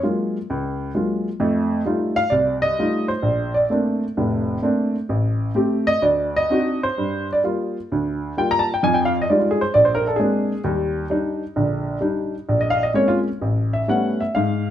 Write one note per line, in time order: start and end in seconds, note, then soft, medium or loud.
0.03 0.36 F#3 soft
0.03 0.36 G#3 soft
0.03 0.36 A#3 medium
0.03 0.36 F4 medium
0.50 0.90 C#2 medium
0.95 1.27 F#3 soft
0.95 1.27 G#3 soft
0.95 1.28 A#3 soft
0.95 1.28 F4 medium
1.40 1.80 F2 medium
1.40 1.80 A3 medium
1.85 2.19 G3 medium
1.85 2.19 A3 medium
1.85 2.19 D#4 soft
1.85 2.19 F4 medium
2.16 2.31 F5 loud
2.30 2.71 C2 medium
2.30 2.61 D5 medium
2.62 3.05 D#5 loud
2.79 3.10 G3 medium
2.79 3.11 A3 soft
2.79 3.11 D#4 soft
2.79 3.11 F4 medium
3.08 3.51 C5 medium
3.23 3.63 A#1 medium
3.54 3.69 D5 medium
3.70 4.02 A3 medium
3.70 4.03 A#3 medium
3.70 4.03 C4 medium
3.70 4.03 D4 medium
4.17 4.56 F1 medium
4.17 4.57 A2 medium
4.62 4.95 A3 medium
4.62 4.95 A#3 soft
4.62 4.95 C4 medium
4.62 4.95 D4 medium
5.09 5.49 A1 medium
5.55 5.88 A3 medium
5.55 5.88 C4 medium
5.55 5.88 G4 medium
5.87 6.01 D#5 loud
6.02 6.43 D2 medium
6.02 6.33 D5 medium
6.36 6.80 D#5 loud
6.50 6.84 C4 medium
6.50 6.84 D4 soft
6.50 6.84 D#4 medium
6.50 6.84 F#4 medium
6.83 7.26 C5 medium
6.98 7.38 G2 medium
7.33 7.40 D5 medium
7.44 7.76 G3 medium
7.44 7.77 A#3 soft
7.44 7.77 F4 medium
7.92 8.31 D2 medium
8.37 8.69 G3 medium
8.37 8.69 A#3 soft
8.37 8.70 F4 medium
8.37 8.52 G5 medium
8.51 8.66 A#5 loud
8.59 8.70 A5 medium
8.74 8.81 G5 medium
8.83 9.22 F2 medium
8.83 9.22 F3 medium
8.83 8.98 G#5 loud
8.94 9.11 G5 medium
9.05 9.16 F5 medium
9.22 9.28 D#5 medium
9.30 9.61 G3 medium
9.30 9.61 G#3 soft
9.30 9.61 D#4 soft
9.30 9.38 F4 medium
9.30 9.44 D5 medium
9.40 9.56 F4 medium
9.51 9.62 G#4 medium
9.61 9.70 C5 medium
9.74 10.14 A#1 medium
9.74 9.88 D5 medium
9.85 10.02 C5 medium
9.95 10.06 A#4 medium
10.07 10.16 A4 medium
10.16 10.52 G#3 medium
10.16 10.60 G#4 medium
10.20 10.52 A#3 medium
10.20 10.52 C4 soft
10.20 10.52 D4 medium
10.64 11.04 D#2 medium
10.64 11.04 G3 medium
11.10 11.42 G3 medium
11.10 11.42 D4 medium
11.10 11.43 D#4 medium
11.56 11.96 A#1 medium
11.56 11.96 D3 medium
12.01 12.34 G3 medium
12.01 12.34 D4 medium
12.01 12.34 D#4 medium
12.49 12.88 A#1 medium
12.61 12.77 D#5 medium
12.70 12.82 F5 loud
12.83 12.92 D#5 medium
12.94 13.27 G#3 medium
12.94 13.27 A#3 medium
12.94 13.27 C4 soft
12.94 13.27 C#4 medium
12.94 13.10 C#5 medium
13.08 13.18 F4 medium
13.41 13.81 A1 medium
13.73 13.87 E5 medium
13.88 14.21 G3 medium
13.88 14.21 A3 soft
13.88 14.21 B3 soft
13.88 14.21 C#4 medium
13.88 14.19 F#5 medium
14.20 14.34 E5 medium
14.35 14.70 G#2 medium
14.35 14.70 F5 medium